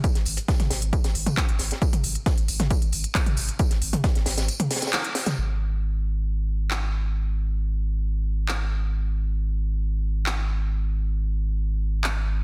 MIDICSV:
0, 0, Header, 1, 3, 480
1, 0, Start_track
1, 0, Tempo, 444444
1, 43, Time_signature, 4, 2, 24, 8
1, 13433, End_track
2, 0, Start_track
2, 0, Title_t, "Sub bass"
2, 0, Program_c, 0, 38
2, 166, Note_on_c, 0, 32, 75
2, 276, Note_off_c, 0, 32, 0
2, 283, Note_on_c, 0, 32, 105
2, 404, Note_off_c, 0, 32, 0
2, 646, Note_on_c, 0, 32, 81
2, 756, Note_off_c, 0, 32, 0
2, 763, Note_on_c, 0, 32, 97
2, 880, Note_off_c, 0, 32, 0
2, 886, Note_on_c, 0, 32, 78
2, 1001, Note_off_c, 0, 32, 0
2, 1126, Note_on_c, 0, 32, 77
2, 1236, Note_off_c, 0, 32, 0
2, 1242, Note_on_c, 0, 32, 95
2, 1363, Note_off_c, 0, 32, 0
2, 1605, Note_on_c, 0, 32, 76
2, 1715, Note_off_c, 0, 32, 0
2, 1722, Note_on_c, 0, 32, 94
2, 1843, Note_off_c, 0, 32, 0
2, 2086, Note_on_c, 0, 32, 77
2, 2195, Note_off_c, 0, 32, 0
2, 2202, Note_on_c, 0, 32, 104
2, 2323, Note_off_c, 0, 32, 0
2, 2567, Note_on_c, 0, 32, 80
2, 2676, Note_off_c, 0, 32, 0
2, 2683, Note_on_c, 0, 32, 100
2, 2799, Note_off_c, 0, 32, 0
2, 2806, Note_on_c, 0, 32, 78
2, 2920, Note_off_c, 0, 32, 0
2, 3045, Note_on_c, 0, 32, 78
2, 3155, Note_off_c, 0, 32, 0
2, 3162, Note_on_c, 0, 32, 100
2, 3283, Note_off_c, 0, 32, 0
2, 3526, Note_on_c, 0, 32, 77
2, 3636, Note_off_c, 0, 32, 0
2, 3643, Note_on_c, 0, 32, 96
2, 3764, Note_off_c, 0, 32, 0
2, 4006, Note_on_c, 0, 32, 77
2, 4117, Note_off_c, 0, 32, 0
2, 4123, Note_on_c, 0, 32, 101
2, 4244, Note_off_c, 0, 32, 0
2, 4486, Note_on_c, 0, 32, 79
2, 4596, Note_off_c, 0, 32, 0
2, 4603, Note_on_c, 0, 32, 99
2, 4719, Note_off_c, 0, 32, 0
2, 4726, Note_on_c, 0, 32, 79
2, 4840, Note_off_c, 0, 32, 0
2, 5802, Note_on_c, 0, 32, 85
2, 13433, Note_off_c, 0, 32, 0
2, 13433, End_track
3, 0, Start_track
3, 0, Title_t, "Drums"
3, 41, Note_on_c, 9, 54, 84
3, 43, Note_on_c, 9, 36, 112
3, 43, Note_on_c, 9, 42, 61
3, 149, Note_off_c, 9, 54, 0
3, 151, Note_off_c, 9, 36, 0
3, 151, Note_off_c, 9, 42, 0
3, 164, Note_on_c, 9, 38, 49
3, 166, Note_on_c, 9, 42, 63
3, 272, Note_off_c, 9, 38, 0
3, 274, Note_off_c, 9, 42, 0
3, 275, Note_on_c, 9, 54, 73
3, 281, Note_on_c, 9, 46, 101
3, 383, Note_off_c, 9, 54, 0
3, 389, Note_off_c, 9, 46, 0
3, 401, Note_on_c, 9, 42, 44
3, 406, Note_off_c, 9, 42, 0
3, 406, Note_on_c, 9, 42, 61
3, 514, Note_off_c, 9, 42, 0
3, 523, Note_on_c, 9, 36, 118
3, 523, Note_on_c, 9, 42, 63
3, 527, Note_on_c, 9, 38, 109
3, 528, Note_on_c, 9, 54, 87
3, 631, Note_off_c, 9, 36, 0
3, 631, Note_off_c, 9, 42, 0
3, 635, Note_off_c, 9, 38, 0
3, 636, Note_off_c, 9, 54, 0
3, 645, Note_on_c, 9, 38, 52
3, 646, Note_on_c, 9, 42, 62
3, 646, Note_on_c, 9, 47, 98
3, 753, Note_off_c, 9, 38, 0
3, 754, Note_off_c, 9, 42, 0
3, 754, Note_off_c, 9, 47, 0
3, 759, Note_on_c, 9, 38, 95
3, 762, Note_on_c, 9, 46, 102
3, 772, Note_on_c, 9, 54, 77
3, 867, Note_off_c, 9, 38, 0
3, 870, Note_off_c, 9, 46, 0
3, 880, Note_off_c, 9, 54, 0
3, 886, Note_on_c, 9, 42, 64
3, 994, Note_off_c, 9, 42, 0
3, 1003, Note_on_c, 9, 36, 116
3, 1003, Note_on_c, 9, 42, 62
3, 1011, Note_on_c, 9, 54, 66
3, 1111, Note_off_c, 9, 36, 0
3, 1111, Note_off_c, 9, 42, 0
3, 1119, Note_off_c, 9, 54, 0
3, 1124, Note_on_c, 9, 54, 82
3, 1126, Note_on_c, 9, 42, 65
3, 1128, Note_on_c, 9, 38, 96
3, 1232, Note_off_c, 9, 54, 0
3, 1234, Note_off_c, 9, 42, 0
3, 1236, Note_off_c, 9, 38, 0
3, 1243, Note_on_c, 9, 46, 102
3, 1351, Note_off_c, 9, 46, 0
3, 1365, Note_on_c, 9, 54, 61
3, 1366, Note_on_c, 9, 42, 62
3, 1366, Note_on_c, 9, 47, 93
3, 1473, Note_off_c, 9, 54, 0
3, 1474, Note_off_c, 9, 42, 0
3, 1474, Note_off_c, 9, 47, 0
3, 1482, Note_on_c, 9, 54, 93
3, 1483, Note_on_c, 9, 36, 110
3, 1483, Note_on_c, 9, 38, 115
3, 1483, Note_on_c, 9, 39, 116
3, 1483, Note_on_c, 9, 42, 61
3, 1590, Note_off_c, 9, 54, 0
3, 1591, Note_off_c, 9, 36, 0
3, 1591, Note_off_c, 9, 38, 0
3, 1591, Note_off_c, 9, 39, 0
3, 1591, Note_off_c, 9, 42, 0
3, 1606, Note_on_c, 9, 42, 64
3, 1714, Note_off_c, 9, 42, 0
3, 1714, Note_on_c, 9, 54, 60
3, 1717, Note_on_c, 9, 38, 52
3, 1722, Note_on_c, 9, 46, 101
3, 1822, Note_off_c, 9, 54, 0
3, 1825, Note_off_c, 9, 38, 0
3, 1830, Note_off_c, 9, 46, 0
3, 1846, Note_on_c, 9, 42, 60
3, 1857, Note_on_c, 9, 38, 54
3, 1954, Note_off_c, 9, 42, 0
3, 1963, Note_on_c, 9, 36, 110
3, 1963, Note_on_c, 9, 42, 65
3, 1965, Note_off_c, 9, 38, 0
3, 1969, Note_on_c, 9, 54, 95
3, 2071, Note_off_c, 9, 36, 0
3, 2071, Note_off_c, 9, 42, 0
3, 2077, Note_off_c, 9, 54, 0
3, 2085, Note_on_c, 9, 42, 66
3, 2085, Note_on_c, 9, 47, 96
3, 2193, Note_off_c, 9, 42, 0
3, 2193, Note_off_c, 9, 47, 0
3, 2197, Note_on_c, 9, 54, 65
3, 2202, Note_on_c, 9, 46, 102
3, 2305, Note_off_c, 9, 54, 0
3, 2310, Note_off_c, 9, 46, 0
3, 2326, Note_on_c, 9, 42, 63
3, 2434, Note_off_c, 9, 42, 0
3, 2443, Note_on_c, 9, 36, 116
3, 2443, Note_on_c, 9, 42, 66
3, 2444, Note_on_c, 9, 38, 106
3, 2448, Note_on_c, 9, 54, 94
3, 2551, Note_off_c, 9, 36, 0
3, 2551, Note_off_c, 9, 42, 0
3, 2552, Note_off_c, 9, 38, 0
3, 2556, Note_off_c, 9, 54, 0
3, 2566, Note_on_c, 9, 42, 65
3, 2674, Note_off_c, 9, 42, 0
3, 2682, Note_on_c, 9, 46, 104
3, 2688, Note_on_c, 9, 54, 69
3, 2790, Note_off_c, 9, 46, 0
3, 2796, Note_off_c, 9, 54, 0
3, 2806, Note_on_c, 9, 42, 64
3, 2806, Note_on_c, 9, 47, 96
3, 2807, Note_on_c, 9, 38, 57
3, 2914, Note_off_c, 9, 42, 0
3, 2914, Note_off_c, 9, 47, 0
3, 2915, Note_off_c, 9, 38, 0
3, 2922, Note_on_c, 9, 36, 113
3, 2922, Note_on_c, 9, 42, 65
3, 2923, Note_on_c, 9, 54, 98
3, 3030, Note_off_c, 9, 36, 0
3, 3030, Note_off_c, 9, 42, 0
3, 3031, Note_off_c, 9, 54, 0
3, 3045, Note_on_c, 9, 42, 66
3, 3153, Note_off_c, 9, 42, 0
3, 3157, Note_on_c, 9, 54, 74
3, 3162, Note_on_c, 9, 46, 105
3, 3265, Note_off_c, 9, 54, 0
3, 3270, Note_off_c, 9, 46, 0
3, 3284, Note_on_c, 9, 42, 63
3, 3392, Note_off_c, 9, 42, 0
3, 3401, Note_on_c, 9, 38, 109
3, 3401, Note_on_c, 9, 39, 122
3, 3401, Note_on_c, 9, 42, 64
3, 3402, Note_on_c, 9, 36, 113
3, 3403, Note_on_c, 9, 54, 89
3, 3509, Note_off_c, 9, 38, 0
3, 3509, Note_off_c, 9, 39, 0
3, 3509, Note_off_c, 9, 42, 0
3, 3510, Note_off_c, 9, 36, 0
3, 3511, Note_off_c, 9, 54, 0
3, 3525, Note_on_c, 9, 42, 67
3, 3525, Note_on_c, 9, 47, 99
3, 3633, Note_off_c, 9, 42, 0
3, 3633, Note_off_c, 9, 47, 0
3, 3635, Note_on_c, 9, 54, 67
3, 3641, Note_on_c, 9, 46, 99
3, 3743, Note_off_c, 9, 54, 0
3, 3749, Note_off_c, 9, 46, 0
3, 3765, Note_on_c, 9, 42, 63
3, 3873, Note_off_c, 9, 42, 0
3, 3878, Note_on_c, 9, 54, 94
3, 3882, Note_on_c, 9, 36, 114
3, 3883, Note_on_c, 9, 42, 69
3, 3986, Note_off_c, 9, 54, 0
3, 3990, Note_off_c, 9, 36, 0
3, 3991, Note_off_c, 9, 42, 0
3, 4000, Note_on_c, 9, 38, 49
3, 4005, Note_on_c, 9, 42, 69
3, 4108, Note_off_c, 9, 38, 0
3, 4113, Note_off_c, 9, 42, 0
3, 4122, Note_on_c, 9, 46, 100
3, 4126, Note_on_c, 9, 54, 71
3, 4230, Note_off_c, 9, 46, 0
3, 4234, Note_off_c, 9, 54, 0
3, 4246, Note_on_c, 9, 42, 64
3, 4246, Note_on_c, 9, 47, 90
3, 4253, Note_off_c, 9, 42, 0
3, 4253, Note_on_c, 9, 42, 46
3, 4354, Note_off_c, 9, 47, 0
3, 4361, Note_off_c, 9, 42, 0
3, 4362, Note_on_c, 9, 36, 115
3, 4363, Note_on_c, 9, 42, 68
3, 4364, Note_on_c, 9, 38, 114
3, 4367, Note_on_c, 9, 54, 84
3, 4470, Note_off_c, 9, 36, 0
3, 4471, Note_off_c, 9, 42, 0
3, 4472, Note_off_c, 9, 38, 0
3, 4475, Note_off_c, 9, 54, 0
3, 4486, Note_on_c, 9, 42, 65
3, 4492, Note_on_c, 9, 38, 55
3, 4594, Note_off_c, 9, 42, 0
3, 4598, Note_off_c, 9, 38, 0
3, 4598, Note_on_c, 9, 38, 108
3, 4602, Note_on_c, 9, 46, 103
3, 4605, Note_on_c, 9, 54, 76
3, 4706, Note_off_c, 9, 38, 0
3, 4710, Note_off_c, 9, 46, 0
3, 4713, Note_off_c, 9, 54, 0
3, 4725, Note_on_c, 9, 38, 100
3, 4726, Note_on_c, 9, 42, 67
3, 4728, Note_on_c, 9, 54, 77
3, 4833, Note_off_c, 9, 38, 0
3, 4834, Note_off_c, 9, 42, 0
3, 4836, Note_off_c, 9, 54, 0
3, 4843, Note_on_c, 9, 42, 65
3, 4845, Note_on_c, 9, 54, 89
3, 4951, Note_off_c, 9, 42, 0
3, 4953, Note_off_c, 9, 54, 0
3, 4966, Note_on_c, 9, 42, 68
3, 4966, Note_on_c, 9, 47, 94
3, 5074, Note_off_c, 9, 42, 0
3, 5074, Note_off_c, 9, 47, 0
3, 5082, Note_on_c, 9, 54, 67
3, 5083, Note_on_c, 9, 38, 91
3, 5083, Note_on_c, 9, 46, 103
3, 5142, Note_off_c, 9, 38, 0
3, 5142, Note_on_c, 9, 38, 80
3, 5148, Note_off_c, 9, 54, 0
3, 5148, Note_on_c, 9, 54, 72
3, 5191, Note_off_c, 9, 46, 0
3, 5206, Note_on_c, 9, 42, 68
3, 5208, Note_off_c, 9, 38, 0
3, 5208, Note_off_c, 9, 54, 0
3, 5208, Note_on_c, 9, 38, 95
3, 5208, Note_on_c, 9, 54, 68
3, 5261, Note_off_c, 9, 38, 0
3, 5261, Note_on_c, 9, 38, 87
3, 5264, Note_off_c, 9, 54, 0
3, 5264, Note_on_c, 9, 54, 71
3, 5314, Note_off_c, 9, 42, 0
3, 5320, Note_off_c, 9, 54, 0
3, 5320, Note_on_c, 9, 54, 90
3, 5323, Note_on_c, 9, 39, 124
3, 5323, Note_on_c, 9, 42, 68
3, 5329, Note_off_c, 9, 38, 0
3, 5329, Note_on_c, 9, 38, 113
3, 5428, Note_off_c, 9, 54, 0
3, 5431, Note_off_c, 9, 39, 0
3, 5431, Note_off_c, 9, 42, 0
3, 5437, Note_off_c, 9, 38, 0
3, 5447, Note_on_c, 9, 42, 68
3, 5555, Note_off_c, 9, 42, 0
3, 5561, Note_on_c, 9, 38, 103
3, 5562, Note_on_c, 9, 54, 80
3, 5563, Note_on_c, 9, 46, 97
3, 5669, Note_off_c, 9, 38, 0
3, 5670, Note_off_c, 9, 54, 0
3, 5671, Note_off_c, 9, 46, 0
3, 5682, Note_on_c, 9, 54, 84
3, 5684, Note_on_c, 9, 38, 109
3, 5686, Note_on_c, 9, 42, 65
3, 5686, Note_on_c, 9, 47, 86
3, 5790, Note_off_c, 9, 54, 0
3, 5792, Note_off_c, 9, 38, 0
3, 5794, Note_off_c, 9, 42, 0
3, 5794, Note_off_c, 9, 47, 0
3, 7242, Note_on_c, 9, 39, 117
3, 7350, Note_off_c, 9, 39, 0
3, 9163, Note_on_c, 9, 39, 115
3, 9271, Note_off_c, 9, 39, 0
3, 11083, Note_on_c, 9, 39, 113
3, 11191, Note_off_c, 9, 39, 0
3, 13003, Note_on_c, 9, 39, 109
3, 13111, Note_off_c, 9, 39, 0
3, 13433, End_track
0, 0, End_of_file